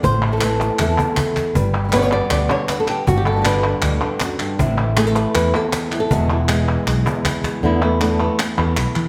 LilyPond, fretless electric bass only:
\new Staff \with { instrumentName = "Fretless electric bass" } { \clef bass \time 4/4 \tempo 4 = 158 a,,2 e,8 r4. | g,,2 d,8 r4. | g,,2 d,8 r4. | a,,2 e,8 r4. |
e,,2 b,,8 r4. | e,2 r8 e,8 b,,16 r16 e8 | }